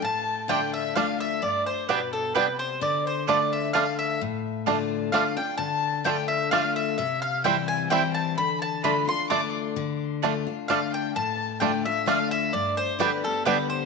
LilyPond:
<<
  \new Staff \with { instrumentName = "Fiddle" } { \time 3/4 \key d \dorian \tempo 4 = 130 a''4 g''8 e''8 f''8 e''8 | d''8 c''8 b'8 a'8 b'8 c''8 | d''8 c''8 d''8 e''8 f''8 e''8 | r2 f''8 g''8 |
a''4 g''8 e''8 f''8 e''8 | e''8 f''8 g''8 gis''8 g''8 a''8 | b''8 a''8 b''8 c'''8 d'''8 r8 | r2 f''8 g''8 |
a''4 g''8 e''8 f''8 e''8 | d''8 c''8 b'8 a'8 b'8 c''8 | }
  \new Staff \with { instrumentName = "Mandolin" } { \time 3/4 \key d \dorian a''4 g''8 e''8 f''8 e''8 | d''8 c''8 b'8 a'8 b'8 c''8 | d''8 c''8 d''8 e''8 f''8 e''8 | r2 f''8 g''8 |
a''4 g''8 e''8 f''8 e''8 | e''8 f''8 g''8 gis''8 g''8 a''8 | b''8 a''8 b''8 c'''8 d'''8 r8 | r2 f''8 g''8 |
a''4 g''8 e''8 f''8 e''8 | d''8 c''8 b'8 a'8 b'8 c''8 | }
  \new Staff \with { instrumentName = "Mandolin" } { \time 3/4 \key d \dorian r4 <a f' d'' a''>8 r8 <a f' d'' a''>8 r8 | r4 <b g' d'' g''>8 r8 <b g' d'' g''>8 r8 | r4 <a f' d'' a''>8 r8 <a f' d'' a''>8 r8 | r4 <a f' d'' a''>8 r8 <a f' d'' a''>8 r8 |
r4 <a f' d'' a''>8 r8 <a f' d'' a''>8 r8 | r4 <c' e' c'' g''>8 r8 <c' e' c'' g''>8 r8 | r4 <a f' d'' a''>8 r8 <a f' d'' a''>8 r8 | r4 <a f' d'' a''>8 r8 <a f' d'' a''>8 r8 |
r4 <a f' d'' a''>8 r8 <a f' d'' a''>8 r8 | r4 <b g' d'' g''>8 r8 <b g' d'' g''>8 r8 | }
  \new Staff \with { instrumentName = "Five-string banjo" } { \time 3/4 \key d \dorian r4 <a d'>8 r8 <a d'>8 r8 | r4 <g b d'>8 r8 <g b d'>8 r8 | r4 <a d'>8 r8 <a d'>8 r8 | r4 <a d'>8 r8 <a d'>8 r8 |
r4 <a d'>8 r8 <a d'>8 r8 | r4 <g c' e'>8 r8 <g c' e'>8 r8 | r4 <a d'>8 r8 <a d'>8 r8 | r4 <a d'>8 r8 <a d'>8 r8 |
r4 <a d'>8 r8 <a d'>8 r8 | r4 <g b d'>8 r8 <g b d'>8 r8 | }
  \new Staff \with { instrumentName = "Steel-string acoustic guitar" } { \time 3/4 \key d \dorian << { r4 <d a d' f'>4 <d a d' f'>4 | r2. | r4 <d a d' f'>4 <d a d' f'>4 | r4 <d a d' f'>4 <d a d' f'>8 <d' f'>8 |
r4 <d a d' f'>4 <d a d' f'>4 | r4 <e g c' e'>4 <e g c' e'>4 | r4 <d a d' f'>8 <d' f'>8 <d a d' f'>4 | r4 <d a d' f'>8 <d' f'>8 <d a d' f'>4 |
r4 <d a d' f'>8 <d' f'>8 <d a d' f'>4 | r4 <d g b g'>8 <b g'>8 <d g b g'>4 | } \\ { a,2 r4 | g,4 b,4 c4 | d2 r4 | a,2 r4 |
d2 r4 | c2 r4 | d2 r4 | d2 r4 |
a,2 r4 | g,2 r4 | } >> }
>>